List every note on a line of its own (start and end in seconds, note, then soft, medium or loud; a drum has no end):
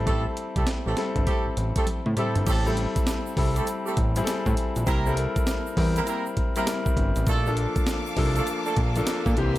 0.00 0.26 A1 medium
0.00 0.74 G3 medium
0.00 0.75 C4 medium
0.00 0.75 E4 medium
0.00 0.75 A4 medium
0.06 0.24 A3 loud
0.06 0.24 C4 medium
0.06 0.24 G4 medium
0.06 0.24 A4 loud
0.06 kick loud
0.06 closed hi-hat medium
0.37 closed hi-hat medium
0.55 0.65 C2 medium
0.55 0.66 A3 medium
0.55 0.65 C4 medium
0.55 0.66 G4 medium
0.55 0.66 A4 medium
0.55 kick loud
0.55 closed hi-hat medium
0.67 snare loud
0.67 closed hi-hat medium
0.85 0.95 A1 medium
0.85 0.96 A3 medium
0.85 0.95 C4 medium
0.85 0.95 G4 medium
0.85 0.96 A4 medium
0.97 1.77 G3 medium
0.97 1.77 C4 medium
0.97 1.78 E4 medium
0.97 1.78 A4 medium
0.97 snare medium
0.97 closed hi-hat medium
1.16 1.25 G1 medium
1.16 kick medium
1.16 closed hi-hat medium
1.26 1.44 A3 medium
1.26 1.44 C4 medium
1.26 1.44 G4 medium
1.26 1.44 A4 medium
1.26 kick medium
1.26 closed hi-hat medium
1.46 1.50 A1 soft
1.57 1.73 A1 medium
1.57 closed hi-hat medium
1.76 1.86 A3 medium
1.76 1.86 C4 medium
1.76 1.86 G4 medium
1.76 1.86 A4 medium
1.76 kick medium
1.76 closed hi-hat medium
1.87 closed hi-hat medium
1.87 high tom medium
2.06 2.15 A2 loud
2.06 mid tom medium
2.16 2.39 G3 medium
2.16 2.34 A3 medium
2.16 2.34 C4 medium
2.16 2.39 C4 medium
2.16 2.40 E4 medium
2.16 2.34 G4 medium
2.16 2.34 A4 medium
2.16 2.40 A4 medium
2.16 closed hi-hat medium
2.16 mid tom medium
2.35 2.45 G1 medium
2.35 closed hi-hat soft
2.35 floor tom medium
2.46 2.87 A1 loud
2.46 2.75 A3 medium
2.46 2.75 C4 medium
2.46 2.75 G4 medium
2.46 2.75 A4 medium
2.46 kick loud
2.46 closed hi-hat medium
2.46 crash medium
2.46 shaker medium
2.66 3.11 G3 medium
2.66 3.11 C4 medium
2.66 3.11 E4 medium
2.66 3.11 A4 medium
2.66 shaker medium
2.77 closed hi-hat medium
2.96 kick loud
2.96 closed hi-hat medium
2.96 shaker soft
3.07 snare loud
3.07 closed hi-hat medium
3.07 shaker medium
3.26 shaker soft
3.37 3.61 C2 medium
3.37 3.88 G3 medium
3.37 3.88 C4 medium
3.37 3.89 E4 medium
3.37 3.89 A4 medium
3.37 kick medium
3.37 open hi-hat medium
3.55 3.66 A3 medium
3.55 3.65 C4 medium
3.55 3.65 G4 medium
3.55 3.66 A4 medium
3.55 closed hi-hat medium
3.55 shaker soft
3.67 closed hi-hat medium
3.67 shaker medium
3.85 3.96 A3 medium
3.85 3.95 C4 medium
3.85 3.96 G4 medium
3.85 3.96 A4 medium
3.85 shaker soft
3.97 4.22 A1 medium
3.97 kick loud
3.97 closed hi-hat medium
4.16 4.73 G3 medium
4.16 4.73 C4 medium
4.16 4.73 E4 medium
4.16 4.21 G#4 medium
4.16 closed hi-hat medium
4.16 shaker medium
4.24 4.77 A4 medium
4.24 snare loud
4.24 closed hi-hat medium
4.24 shaker medium
4.46 4.55 A2 loud
4.46 kick loud
4.46 shaker medium
4.57 closed hi-hat medium
4.76 4.85 A#1 medium
4.76 closed hi-hat soft
4.76 shaker medium
4.86 5.27 C2 loud
4.86 5.15 A#3 medium
4.86 5.15 C4 medium
4.86 5.15 E4 medium
4.86 5.15 A#4 loud
4.86 kick loud
4.86 closed hi-hat medium
4.86 shaker medium
5.06 5.51 G3 medium
5.06 5.51 C4 medium
5.06 5.51 E4 medium
5.06 5.11 A4 medium
5.06 shaker medium
5.14 5.54 A#4 loud
5.14 closed hi-hat medium
5.36 kick loud
5.36 closed hi-hat medium
5.36 shaker medium
5.47 snare loud
5.47 closed hi-hat medium
5.47 shaker medium
5.66 shaker soft
5.77 6.02 E2 medium
5.77 6.28 G3 medium
5.77 6.28 C4 medium
5.77 6.29 E4 medium
5.77 6.29 A#4 loud
5.77 kick medium
5.77 open hi-hat medium
5.96 6.06 A#3 medium
5.96 6.05 C4 medium
5.96 6.06 E4 medium
5.96 6.06 A#4 medium
5.96 closed hi-hat medium
5.96 shaker medium
6.07 6.24 A#3 medium
6.07 6.24 C4 medium
6.07 6.24 E4 medium
6.07 6.24 A#4 medium
6.07 closed hi-hat medium
6.07 shaker medium
6.26 shaker soft
6.37 kick medium
6.37 closed hi-hat medium
6.56 7.13 G3 medium
6.56 6.66 A#3 medium
6.56 6.65 C4 medium
6.56 7.13 C4 medium
6.56 6.66 E4 medium
6.56 7.13 E4 medium
6.56 6.66 A#4 medium
6.56 7.13 A#4 medium
6.56 closed hi-hat medium
6.56 shaker medium
6.67 snare loud
6.67 closed hi-hat medium
6.67 shaker medium
6.86 kick loud
6.86 shaker medium
6.97 7.12 G1 medium
6.97 kick medium
6.97 closed hi-hat medium
7.16 7.25 A1 medium
7.16 closed hi-hat medium
7.16 shaker medium
7.26 7.67 A#1 loud
7.26 7.55 A3 loud
7.26 7.55 A#3 medium
7.26 9.59 A#3 medium
7.26 7.55 D4 medium
7.26 7.55 A4 loud
7.26 9.35 F5 medium
7.26 9.35 A5 medium
7.26 9.35 D6 medium
7.26 kick loud
7.26 closed hi-hat medium
7.26 shaker medium
7.46 7.91 F3 medium
7.46 7.91 A#3 medium
7.46 7.91 D4 medium
7.46 7.91 A4 loud
7.46 shaker soft
7.57 closed hi-hat medium
7.76 kick medium
7.76 closed hi-hat medium
7.76 shaker soft
7.87 snare loud
7.87 closed hi-hat medium
7.87 shaker medium
8.06 shaker soft
8.17 8.41 C2 loud
8.17 8.68 F3 medium
8.17 8.68 A#3 medium
8.17 8.68 D4 medium
8.17 8.69 A4 loud
8.17 kick medium
8.17 open hi-hat medium
8.36 8.46 A3 medium
8.36 8.45 A#3 medium
8.36 8.46 D4 medium
8.36 8.46 A4 medium
8.36 closed hi-hat medium
8.36 shaker medium
8.47 closed hi-hat medium
8.47 shaker medium
8.66 8.76 A3 medium
8.66 8.76 A#3 medium
8.66 8.76 D4 medium
8.66 8.76 A4 medium
8.66 shaker soft
8.77 9.01 A#1 medium
8.77 kick loud
8.77 closed hi-hat medium
8.96 9.37 F3 medium
8.96 9.36 A#3 medium
8.96 9.37 D4 medium
8.96 9.37 A4 medium
8.96 closed hi-hat medium
8.96 shaker medium
9.07 snare loud
9.07 closed hi-hat medium
9.07 shaker medium
9.26 9.35 A#2 loud
9.26 kick loud
9.26 shaker soft
9.37 9.59 C2 loud
9.37 9.59 E3 medium
9.37 9.59 A#3 medium
9.37 9.59 C4 medium
9.37 9.59 G4 loud
9.37 9.59 E5 medium
9.37 9.59 G5 medium
9.37 9.59 C6 loud
9.37 closed hi-hat medium